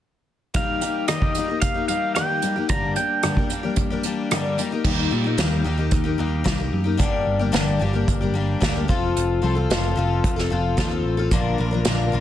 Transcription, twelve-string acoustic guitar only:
0.54 D#3 G3 A#3 D#4 G4
0.81 G3 A#3 D#4 G4
1.08 D#3 G3 A#3 D#4 G4
1.36 G3 A#3 D#4 G4
1.48 A#3 D#4 G4
1.74 A#3 D#4 G4
1.88 G3 A#3 D#4 G4
2.15 D#3 G3 A#3 D#4 G4
2.42 G3 A#3 D#4 G4
2.56 A#3 D#4 G4
2.69 G2 D3 G3 A#3 D4 G4
2.96 G3 A#3 D4 G4
3.23 G2 D3 G3 A#3 D4 G4
3.36 G3 A#3 D4 G4
3.50 G3 A#3 D4 G4
3.63 G3 A#3 D4 G4
3.90 G3 A#3 D4 G4
4.04 G3 A#3 D4 G4
4.31 G2 D3 G3 A#3 D4 G4
4.58 G3 A#3 D#4 G4
4.71 A#3 D#4 G4
4.85 D#3 G3 A#3 D#4 G4
5.11 G3 A#3 D#4 G4
5.24 A#3 D#4 G4
5.38 D#3 G3 A#3 D#4 G4
5.64 G3 A#3 D#4 G4
5.78 A#3 D#4 G4
6.04 A#3 D#4 G4
6.18 G3 A#3 D#4 G4
6.44 D#3 G3 A#3 D#4 G4
6.58 A#3 D#4 G4
6.84 A#3 D#4 G4
6.97 G2 D3 G3 A#3 D4 G4
7.39 G3 A#3 D4 G4
7.52 G2 D3 G3 A#3 D4 G4
7.79 G3 A#3 D4 G4
7.93 G3 A#3 D4 G4
8.21 G3 A#3 D4 G4
8.34 G3 A#3 D4 G4
8.61 G2 D3 G3 A#3 D4 G4
8.75 G3 A#3 D4 G4
8.88 F3 C4 F4 A4
9.42 F3 C4 F4 A4
9.55 C4 F4 A4
9.70 F3 C4 F4 A4
9.96 F3 C4 F4 A4
10.36 C4 F4 A4
10.50 F3 C4 F4 A4
10.77 F3 C4 F4 A4
10.89 C4 F4 A4
11.17 C4 F4 A4
11.31 A#2 D3 F3 A#3 D4 A#4
11.58 F3 A#3 D4 A#4
11.71 F3 A#3 D4 A#4
11.85 A#2 D3 F3 A#3 D4 A#4
12.12 F3 A#3 D4 A#4

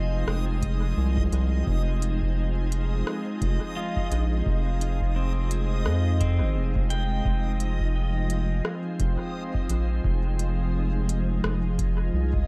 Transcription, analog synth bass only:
Already playing: F1
0.27 F1
0.97 C2
1.32 C2
1.67 F1
3.42 F1
4.11 A#1
4.46 F1
5.86 F2
6.40 G#1
6.55 F1
7.25 F1
9.00 F1
9.69 A#1
10.04 F1
11.44 F1
12.14 C2

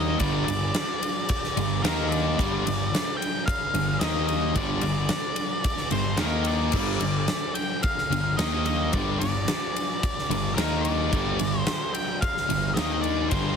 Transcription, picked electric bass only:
Already playing: D#2
0.20 G1
0.47 G1
1.57 G1
1.84 D#2
2.38 G1
2.68 G1
3.73 G1
4.01 D#2
4.55 G1
4.82 G1
5.91 G1
6.19 D#2
6.73 G1
7.00 G1
8.10 G1
8.38 D#2
8.93 G1
9.19 G1
10.30 G1
10.58 D#2
11.12 G1
11.40 G1
12.50 G1
12.78 D#2
13.32 G1

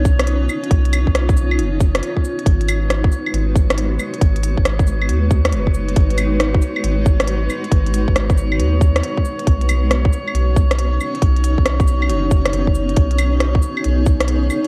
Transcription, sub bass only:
Already playing: B1
0.71 B1
1.07 B1
1.59 F#1
2.46 G#1
3.33 G#1
4.22 G#1
4.58 G#1
5.09 D#2
5.52 F#1
5.97 G#1
6.84 G#1
7.71 G#1
8.08 G#1
8.59 D#2
9.47 B1
10.34 B1
11.22 B1
11.58 B1
12.09 F#1
12.53 F#1
12.97 B1
13.85 B1

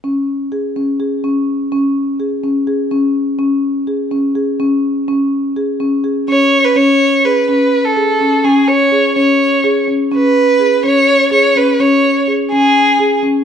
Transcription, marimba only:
0.04 C#4
0.52 G#4
0.76 C#4
1.00 G#4
1.24 C#4
1.72 C#4
2.20 G#4
2.43 C#4
2.67 G#4
2.91 C#4
3.39 C#4
3.87 G#4
4.11 C#4
4.35 G#4
4.60 C#4
5.08 C#4
5.56 G#4
5.80 C#4
6.04 G#4
6.28 C#4
6.76 C#4
7.25 G#4
7.49 C#4
7.96 G#4
8.21 C#4
8.45 C#4
8.92 G#4
9.16 C#4
9.64 G#4
9.88 C#4
10.12 C#4
10.59 G#4
10.84 C#4
11.31 G#4
11.56 C#4
11.80 C#4
12.28 G#4
12.52 C#4
12.99 G#4
13.23 C#4

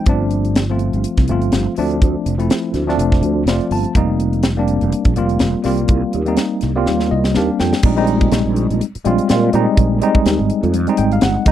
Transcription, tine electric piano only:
0.07 F3 A3 C4 D4
0.70 F3 A3 C4 F4
1.29 F3 A3 C4 F4
1.77 F3 A3 C4 D4
2.38 F3 A3 C4 E4
2.87 F3 A3 C4 D4
3.47 F3 A3 C4 F4 D5
3.72 A5
3.96 G3 A#3 C4 D#4
4.57 G3 A#3 C4 D4
5.16 G3 A#3 C4 F4
5.64 G3 A#3 C4 F4
6.26 G3 A#3 C4 D#4
6.75 G3 A#3 C4 F4
7.11 D#5
7.35 G3 A#3 C4 D4 F5
7.60 G5
7.83 G3 G#3 C4 D#4
7.96 G3 G#3 C4 D#4
9.05 G3 G#3 C4 F4
9.29 G3 G#3 C4 F4
9.53 G3 G#3 C4 D#4
10.01 G3 G#3 C4 D#4
10.87 G3 G#3 C4 D#4
10.98 G5
11.13 F5
11.23 F#5
11.46 E3 G#3 B3 D#4

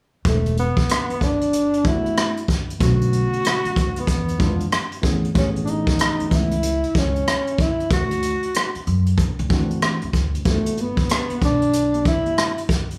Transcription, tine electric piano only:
1.84 G3 A3 B3 D4 F#4
2.79 D3 A3 B3 C#4 F#4
4.38 E3 G#3 B3 D4 F4
5.02 E3 A3 B3 C#4 G#4
5.34 E3 A3 B3 C#4 G4
5.43 G#4
6.29 E3 A3 B3 C#4 E4
9.49 E3 A3 C4 D4 F#4
10.45 G3 A3 B3 D4 F#4

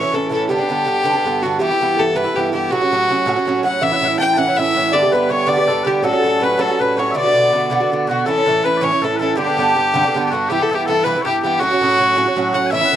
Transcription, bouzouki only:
0.01 E3 C#4 E4
0.11 A2 E3 C#4 E4
0.29 A2 E3 C#4 E4
0.49 G2 D3 B3 D4
0.58 D3 B3 D4
0.69 G2 D3 B3 D4
0.85 G2 D3 B3 D4
1.03 G2 D3 B3 D4
1.13 D3 B3 D4
1.24 G2 D3 B3 D4
1.43 G2 D3 B3 D4
1.60 G2 E3 B3 E4
1.71 E3 B3 E4
1.81 G2 E3 B3 E4
1.98 G2 E3 B3 E4
2.16 G2 E3 B3 E4
2.24 E3 B3 E4
2.35 G2 E3 B3 E4
2.53 G2 E3 B3 E4
2.70 A2 F#3 C#4 F#4
2.81 F#3 C#4 F#4
2.91 A2 F#3 C#4 F#4
3.09 A2 F#3 C#4 F#4
3.26 A2 F#3 C#4 F#4
3.36 F#3 C#4 F#4
3.45 A2 F#3 C#4 F#4
3.63 A2 F#3 C#4 F#4
3.81 A2 E3 C#4 E4
3.91 E3 C#4 E4
4.00 A2 E3 C#4 E4
4.18 A2 E3 C#4 E4
4.36 A2 E3 C#4 E4
4.46 E3 C#4 E4
4.57 A2 E3 C#4 E4
4.74 A2 E3 C#4 E4
4.92 G2 D3 B3 G4
5.02 D3 B3 G4
5.12 G2 D3 B3 G4
5.29 G2 D3 B3 G4
5.46 G2 D3 B3 G4
5.57 D3 B3 G4
5.67 G2 D3 B3 G4
5.85 G2 D3 B3 G4
6.02 A2 F#3 C#4 F#4
6.11 F#3 C#4 F#4
6.23 A2 F#3 C#4 F#4
6.40 A2 F#3 C#4 F#4
6.58 A2 F#3 C#4 F#4
6.68 F#3 C#4 F#4
6.79 A2 F#3 C#4 F#4
6.97 A2 F#3 C#4 F#4
7.14 B2 D3 B3 F#4
7.24 D3 B3 F#4
7.33 B2 D3 B3 F#4
7.52 B2 D3 B3 F#4
7.70 B2 D3 B3 F#4
7.80 D3 B3 F#4
7.90 B2 D3 B3 F#4
8.07 B2 D3 B3 F#4
8.26 A2 E3 C#4 E4
8.36 E3 C#4 E4
8.46 A2 E3 C#4 E4
8.63 A2 E3 C#4 E4
8.81 A2 E3 C#4 E4
8.90 E3 C#4 E4
9.02 A2 E3 C#4 E4
9.20 A2 E3 C#4 E4
9.36 G2 D3 B3 D4
9.46 D3 B3 D4
9.57 G2 D3 B3 D4
9.74 G2 D3 B3 D4
9.94 G2 D3 B3 D4
10.04 D3 B3 D4
10.14 G2 D3 B3 D4
10.31 G2 D3 B3 D4
10.50 G2 E3 B3 E4
10.59 E3 B3 E4
10.69 G2 E3 B3 E4
10.88 G2 E3 B3 E4
11.05 G2 E3 B3 E4
11.16 E3 B3 E4
11.25 G2 E3 B3 E4
11.43 G2 E3 B3 E4
11.60 A2 F#3 C#4 F#4
11.71 F#3 C#4 F#4
11.81 A2 F#3 C#4 F#4
11.98 A2 F#3 C#4 F#4
12.16 A2 F#3 C#4 F#4
12.26 F#3 C#4 F#4
12.36 A2 F#3 C#4 F#4
12.53 A2 F#3 C#4 F#4
12.72 A2 E3 C#4 E4
12.81 E3 C#4 E4
12.91 A2

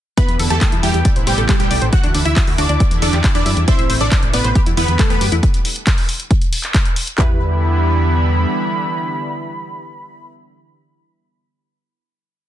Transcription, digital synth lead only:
0.18 B5
0.50 A5
0.83 G5
1.27 G5
1.60 G5
1.93 F#6
2.25 E6
2.58 D6
3.02 D6
3.35 D6
3.68 E6
4.01 D6
4.34 B5
4.77 B5
5.10 B5
7.18 B5

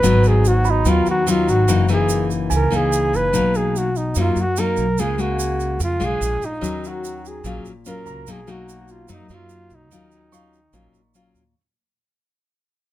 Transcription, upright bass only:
0.02 G#1
0.85 D#2
1.07 D#2
1.48 G#1
1.69 F#1
2.51 C#2
2.73 C#2
3.13 F#1
3.34 B1
4.16 F#2
4.36 F#2
4.77 B1
4.98 C#2
5.80 F2
6.00 B1
6.21 A#1
6.42 A#1
6.62 D#2
7.44 A#1
7.64 A#1
8.06 C#2
8.27 B1
9.09 F#2
9.30 F#2
9.70 B1
9.90 D#2
10.73 A#1
10.93 A#1
11.35 D#2

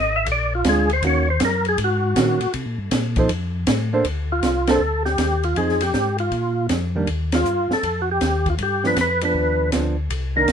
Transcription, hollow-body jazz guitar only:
0.65 G#3 D4 F4
1.04 D#3 A#3 C#4 F#4
2.16 D#3 A#3 C#4 F#4
3.18 F3 D#4 A4 C5
3.93 A#3 D4 A4 C5
4.69 A#3 D4 A4 C5
5.57 F3 C4 D#4 G#4
6.95 D#3 G3 A#3 D4
8.85 F3 B3 D4
9.22 F3 B3 D4
9.73 F3 B3 D4
10.36 D#3 A#3 D4

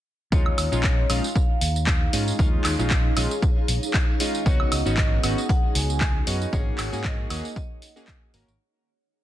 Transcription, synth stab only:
0.32 G#3 C#4 D#4 F4
0.72 G#3 C#4 D#4 F4
1.09 G#3 C#4 D#4 F4
2.13 G#3 C#4 D#4 F4
2.39 G#3 C#4 D#4 F4
2.79 G#3 C#4 D#4 F4
3.16 G#3 C#4 D#4 F4
4.20 G#3 C#4 D#4 F4
4.46 B3 C#4 D#4 F#4
4.85 B3 C#4 D#4 F#4
5.23 B3 C#4 D#4 F#4
6.27 B3 C#4 D#4 F#4
6.53 A#3 C#4 F#4 G#4
6.92 A#3 C#4 F#4 G#4
7.30 A#3 C#4 F#4 G#4
7.96 A#3 C#4 F#4 G#4
8.34 A#3 C#4 F#4 A#4

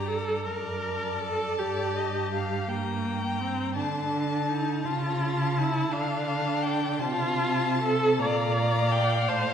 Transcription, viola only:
0.07 A4
0.45 A#4
1.21 A4
1.58 G4
2.68 A#3
3.40 C4
3.77 D4
4.49 D#4
4.85 F4
5.58 E4
5.92 D4
7.01 F4
7.82 A4
8.22 D5
9.28 C5

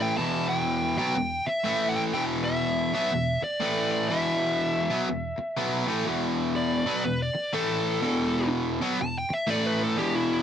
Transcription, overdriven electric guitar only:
Already playing: A2 E3 A3
0.18 E2 B2 E3
0.98 B2 F#3 B3
1.15 E2 B2
1.48 muted overdriven electric guitar stroke
1.64 A2 E3 A3
2.14 E2 B2 E3
2.93 B2 F#3 B3
3.11 E2 B2
3.43 muted overdriven electric guitar stroke
3.60 A2 E3 A3
4.10 E2 B2 E3
4.90 B2 F#3 B3
5.08 E2 B2
5.38 muted overdriven electric guitar stroke
5.57 B2 F#3 B3
5.87 A2 E3 A3
6.06 E2 B2 E3
6.86 B2 F#3 B3
7.04 E2 B2
7.35 muted overdriven electric guitar stroke
7.53 A2 E3 A3
8.01 E2 B2 E3
8.81 B2 F#3 B3
9.00 E2 B2
9.30 muted overdriven electric guitar stroke
9.47 A2 E3 A3
9.97 E2 B2 E3

